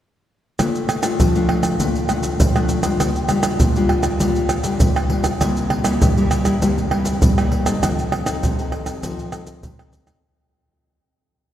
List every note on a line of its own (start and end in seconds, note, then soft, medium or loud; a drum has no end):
0.59 1.16 A#2 medium
0.59 1.00 A3 medium
0.59 1.00 D4 medium
0.59 1.00 F4 medium
0.59 pandeiro medium
0.59 tamborim medium
0.59 maracas medium
0.59 surdo medium
0.75 pandeiro soft
0.75 maracas soft
0.89 pandeiro medium
0.89 tamborim medium
0.89 maracas medium
1.02 1.29 A3 medium
1.02 1.29 D4 medium
1.02 1.29 F4 medium
1.02 pandeiro medium
1.02 tamborim medium
1.02 maracas medium
1.19 1.77 F3 medium
1.19 pandeiro medium
1.19 maracas medium
1.19 surdo medium
1.35 1.75 A3 medium
1.35 1.75 D4 medium
1.35 1.76 F4 medium
1.35 pandeiro soft
1.35 maracas soft
1.49 pandeiro medium
1.49 tamborim medium
1.49 surdo soft
1.63 pandeiro medium
1.63 tamborim medium
1.63 maracas medium
1.63 surdo soft
1.80 2.37 A#2 medium
1.80 1.98 A3 medium
1.80 1.98 D4 medium
1.80 1.98 F4 medium
1.80 pandeiro medium
1.80 maracas medium
1.80 surdo medium
1.96 pandeiro soft
1.96 maracas soft
2.09 2.37 A3 medium
2.09 2.38 D4 medium
2.09 2.38 F4 medium
2.09 pandeiro medium
2.09 tamborim medium
2.09 maracas medium
2.23 pandeiro medium
2.23 maracas medium
2.23 surdo soft
2.40 2.97 F3 medium
2.40 pandeiro medium
2.40 maracas medium
2.40 surdo medium
2.56 2.81 A3 medium
2.56 2.81 D4 medium
2.56 2.81 F4 medium
2.56 pandeiro soft
2.56 tamborim medium
2.56 maracas soft
2.69 pandeiro medium
2.69 maracas medium
2.83 3.28 G3 medium
2.83 3.28 D4 medium
2.83 3.29 F4 medium
2.83 pandeiro medium
2.83 tamborim medium
2.83 maracas medium
2.83 surdo soft
3.00 3.57 A#2 medium
3.00 pandeiro medium
3.00 tamborim medium
3.00 maracas medium
3.00 surdo medium
3.16 pandeiro soft
3.16 maracas soft
3.29 3.58 G3 medium
3.29 3.58 D4 medium
3.29 3.58 F4 medium
3.29 pandeiro medium
3.29 tamborim medium
3.29 maracas medium
3.43 pandeiro medium
3.43 tamborim medium
3.43 maracas medium
3.60 4.18 A#2 medium
3.60 pandeiro medium
3.60 maracas medium
3.60 surdo loud
3.76 4.16 G3 medium
3.76 4.16 D4 medium
3.76 4.17 F4 medium
3.76 pandeiro soft
3.76 maracas soft
3.89 pandeiro medium
3.89 tamborim medium
3.89 surdo soft
4.03 pandeiro medium
4.03 tamborim medium
4.03 maracas medium
4.03 surdo soft
4.20 4.78 A#2 medium
4.20 4.61 G3 medium
4.20 4.61 D4 medium
4.20 4.62 F4 medium
4.20 pandeiro medium
4.20 maracas medium
4.20 surdo medium
4.36 pandeiro soft
4.36 maracas soft
4.49 pandeiro medium
4.49 tamborim medium
4.49 maracas medium
4.64 5.05 G3 medium
4.64 5.06 D4 medium
4.64 5.06 F4 medium
4.64 pandeiro medium
4.64 maracas medium
4.64 surdo soft
4.80 5.38 A#2 medium
4.80 pandeiro medium
4.80 maracas medium
4.80 surdo loud
4.96 pandeiro soft
4.96 tamborim medium
4.96 maracas soft
5.10 5.29 G3 medium
5.10 5.29 D4 medium
5.10 5.29 F4 medium
5.10 pandeiro medium
5.24 pandeiro medium
5.24 tamborim medium
5.24 maracas medium
5.24 surdo soft
5.41 5.99 C3 medium
5.41 5.82 G3 medium
5.41 5.82 A#3 medium
5.41 5.82 E4 medium
5.41 pandeiro medium
5.41 tamborim medium
5.41 maracas medium
5.41 surdo medium
5.57 pandeiro soft
5.57 maracas soft
5.70 pandeiro medium
5.70 tamborim medium
5.85 6.11 G3 medium
5.85 6.11 A#3 medium
5.85 6.12 E4 medium
5.85 pandeiro medium
5.85 tamborim medium
5.85 maracas medium
6.02 6.59 G2 medium
6.02 pandeiro medium
6.02 maracas medium
6.02 surdo loud
6.17 6.42 G3 medium
6.17 6.43 A#3 medium
6.17 6.43 E4 medium
6.17 pandeiro soft
6.17 maracas soft
6.31 pandeiro medium
6.31 tamborim medium
6.31 maracas medium
6.31 surdo soft
6.45 6.56 G3 medium
6.45 6.57 A#3 medium
6.45 6.57 E4 medium
6.45 pandeiro medium
6.45 tamborim medium
6.45 maracas medium
6.45 surdo soft
6.62 7.19 C3 medium
6.62 6.80 G3 medium
6.62 6.80 A#3 medium
6.62 6.80 E4 medium
6.62 pandeiro medium
6.62 maracas medium
6.62 surdo medium
6.78 pandeiro soft
6.78 maracas soft
6.91 7.32 G3 medium
6.91 7.32 A#3 medium
6.91 7.33 E4 medium
6.91 pandeiro medium
6.91 tamborim medium
7.05 pandeiro medium
7.05 maracas medium
7.05 surdo soft
7.22 7.80 G2 medium
7.22 pandeiro medium
7.22 maracas medium
7.22 surdo loud
7.38 7.63 G3 medium
7.38 7.63 A#3 medium
7.38 7.64 E4 medium
7.38 pandeiro soft
7.38 tamborim medium
7.38 maracas soft
7.52 pandeiro medium
7.66 8.22 C4 medium
7.66 8.22 D#4 medium
7.66 8.22 A4 medium
7.66 pandeiro medium
7.66 tamborim medium
7.66 maracas medium
7.66 surdo soft
7.83 8.40 F3 medium
7.83 pandeiro medium
7.83 tamborim medium
7.83 maracas medium
7.83 surdo medium
7.99 pandeiro soft
7.99 maracas soft
8.12 pandeiro medium
8.12 tamborim medium
8.26 8.52 C4 medium
8.26 8.52 D#4 medium
8.26 8.53 A4 medium
8.26 pandeiro medium
8.26 tamborim medium
8.26 maracas medium
8.43 9.00 C3 medium
8.43 pandeiro medium
8.43 maracas medium
8.43 surdo medium
8.58 8.99 C4 medium
8.58 8.99 D#4 medium
8.58 8.99 A4 medium
8.58 pandeiro soft
8.58 maracas soft
8.72 pandeiro medium
8.72 tamborim medium
8.72 surdo soft
8.86 pandeiro medium
8.86 tamborim medium
8.86 maracas medium
8.86 surdo soft
9.03 9.60 F3 medium
9.03 9.21 C4 medium
9.03 9.21 D#4 medium
9.03 9.21 A4 medium
9.03 pandeiro medium
9.03 maracas medium
9.03 surdo medium
9.19 pandeiro soft
9.19 maracas soft
9.32 9.61 C4 medium
9.32 9.61 D#4 medium
9.32 9.62 A4 medium
9.32 pandeiro medium
9.32 tamborim medium
9.32 maracas medium
9.47 pandeiro medium
9.47 maracas medium
9.47 surdo soft
9.63 10.21 C3 medium
9.63 pandeiro medium
9.63 maracas medium
9.63 surdo loud
9.79 10.04 C4 medium
9.79 10.05 D#4 medium
9.79 10.05 A4 medium
9.79 pandeiro soft
9.79 tamborim medium
9.79 maracas soft
9.93 pandeiro medium
9.93 maracas medium
9.93 surdo soft
10.07 10.18 C4 medium
10.07 10.18 D#4 medium
10.07 10.18 A4 medium
10.07 pandeiro medium
10.07 tamborim medium
10.07 maracas medium
10.07 surdo soft